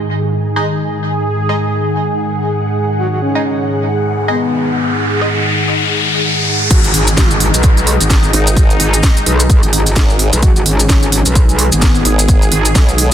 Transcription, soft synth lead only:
2.99 F#4
3.12 F#4
3.22 C#4
4.29 B3
6.71 F#4
6.84 F#4
6.94 G#4
10.43 F#4
10.56 F#4
10.66 C#4
11.72 B3

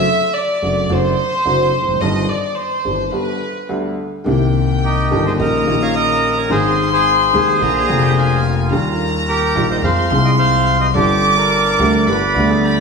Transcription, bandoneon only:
4.84 D#4 G4
5.26 G#4 C5
5.40 A#4 D#5
5.82 C#5 F5
5.95 A#4 D#5
6.37 A#4 C#5
6.51 G#4 C5
6.93 G#4 C5
9.28 G4 A#4
9.71 C5 D#5
9.84 C5 F5
10.25 D#5 G5
10.39 C5 F5
10.81 C5 D#5
10.96 G4 D5
11.37 A#4 D5

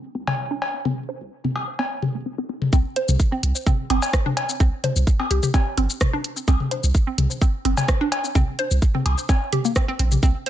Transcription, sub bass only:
0.15 C2
0.27 C2
0.62 G1
0.85 C2
1.21 C2
1.56 C2
2.03 G1
2.73 C2
3.09 C2
3.43 C2
3.90 G1
4.60 C2
4.96 C2
5.31 C2
5.77 G1
6.48 C2
6.84 C2
7.18 C2
7.65 G1
8.35 C2
8.71 C2
9.06 C2
9.99 A#1
10.23 C2

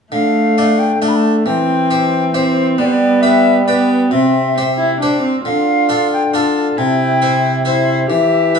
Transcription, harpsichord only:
0.12 D3
0.58 A3 D4 D5
1.02 A3 D4 D5
1.46 E3
1.91 G4 C5
2.34 G4 C5
2.78 G3
3.23 G4 B4
3.68 G4 B4
4.11 C3
4.58 G4 C5
5.02 G4 C5
5.45 D3
5.89 D4 F4 A4
6.34 D4 F4 A4
6.78 C3
7.22 E4 C5
7.65 E4 C5
8.10 E3
8.55 E4 B4

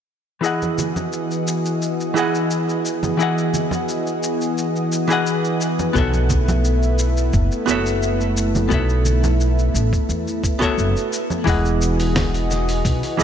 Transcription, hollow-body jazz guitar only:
0.41 E3 E4 G#4 D#5
0.46 F#5
2.14 E3 E4 G#4 D#5
2.19 F#5
3.17 E3 E4 G#4 D#5
3.22 F#5
5.08 E3 E4 G#4 D#5
5.13 F#5
5.93 B3 F#4 A4 C#5
5.98 E5
7.66 B3 F#4 A4 C#5
7.71 E5
8.69 B3 F#4 A4 C#5
8.74 E5
10.59 B3 F#4 A4 C#5
10.64 E5
11.44 E3 E4 G#4 D#5
11.49 F#5
13.17 E3 E4 G#4

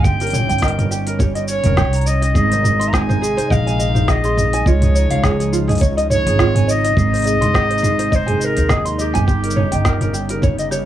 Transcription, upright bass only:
Already playing: G1
0.50 G1
1.66 F1
1.78 C2
2.35 G#1
3.51 A#1
4.66 C#2
5.11 C#2
6.26 G#1
6.97 G#1
7.41 G#1
8.57 D#2
9.15 G1
9.73 G1

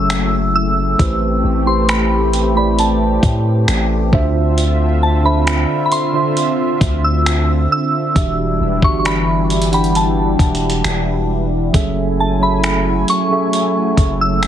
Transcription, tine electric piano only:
Already playing: F#3 C#4 G#4 A4 E5
0.98 A3 E4 G4 B4 C5
1.65 A3 E4 G4 B4 C5
2.55 A3 E4 G4 B4 D5
4.11 D3 D4 F4 C5 E5
5.23 D3 D4 F4 C5 E5
6.13 D3 D4 F4 C5 E5
8.14 E3 D4 F#4 G4 E5
8.81 E3 D4 F#4 G4 E5
9.71 E3 D4 G4 F#5 G5
11.72 F#3 C#4 G#4 A4 E5
12.40 F#3 C#4 G#4 A4 E5
13.29 F#3 C#4 G#4 A4 E5

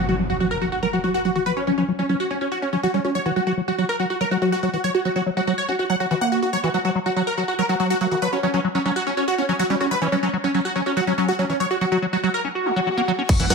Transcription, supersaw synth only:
0.09 F#4
0.30 F#4
0.40 F#4
0.51 A#4
0.62 F#4
0.72 F#4
0.83 A#4
0.93 F#4
1.04 F#4
1.14 F#4
1.25 F#4
1.35 F#4
1.46 B4
1.57 C#4
1.67 C#4
1.78 C#4
1.99 C#4
2.09 C#4
2.20 F#4
2.31 C#4
2.41 C#4
2.52 F#4
2.62 C#4
2.73 C#4
2.83 F#4
2.94 C#4
3.04 C#4
3.15 C#5
3.26 F#4
3.36 F#4
3.47 F#4
3.68 F#4
3.78 F#4
3.89 A#4
4.00 F#4
4.10 F#4
4.21 A#4
4.31 F#4
4.42 F#4
4.52 F#4
4.63 F#4
4.74 F#4
4.84 C#5
4.95 F#4
5.05 F#4
5.16 F#4
5.37 F#4
5.47 F#4
5.58 C#5
5.69 F#4
5.79 F#4
5.90 F#5
6.00 F#4
6.11 F#4
6.21 F#5
6.32 F#4
6.42 F#4
6.53 C#5
6.64 F#4
6.74 F#4
6.85 F#4
7.06 F#4
7.16 F#4
7.27 A#4
7.38 F#4
7.48 F#4
7.59 A#4
7.69 F#4
7.80 F#4
7.90 F#4
8.01 F#4
8.11 F#4
8.22 B4
8.33 C#4
8.43 C#4
8.54 C#4
8.75 C#4
8.85 C#4
8.96 F#4
9.07 C#4
9.17 C#4
9.28 F#4
9.38 C#4
9.49 C#4
9.59 F#4
9.70 C#4
9.81 C#4
9.91 B4
10.02 C#4
10.12 C#4
10.23 C#4
10.44 C#4
10.54 C#4
10.65 F#4
10.76 C#4
10.86 C#4
10.97 F#4
11.07 C#4
11.18 C#4
11.28 F#4
11.39 C#4
11.50 C#4
11.60 C#5
11.71 F#4
11.81 F#4
11.92 F#4
12.13 F#4
12.24 F#4
12.34 A#4
13.29 C#6
13.40 F#5
13.50 F#5

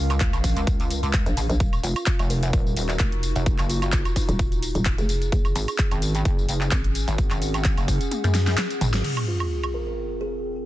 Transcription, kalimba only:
1.84 F4
2.30 A#4
2.43 A#4
2.53 A#4
3.70 F4
4.16 D#4
4.29 D#4
4.98 G#4
9.28 F4
9.74 A#4
9.87 A#4
10.21 G#4

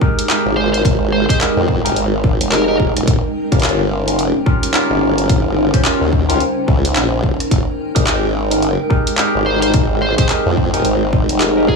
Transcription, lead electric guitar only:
0.57 C5
0.73 C5
1.12 C5
1.29 C5
2.51 A#4
2.68 A#4
9.46 C5
9.62 C5
10.02 C5
10.18 C5
11.68 G#4

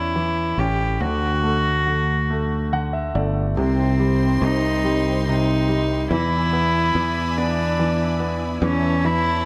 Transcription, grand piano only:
Already playing: E3 C#4 C#5
0.16 E3
0.58 C#4
1.01 D3
1.43 A3
1.86 D3
2.30 A3
2.73 D3 F#5
2.93 E5
3.15 A3 D5
3.57 C3
4.00 G3
4.42 C3
4.84 G3
5.28 C3
5.69 G3
6.12 E3
6.53 B3
6.95 E3
7.38 B3
7.79 E3
8.20 B3
8.62 E3
9.05 E3

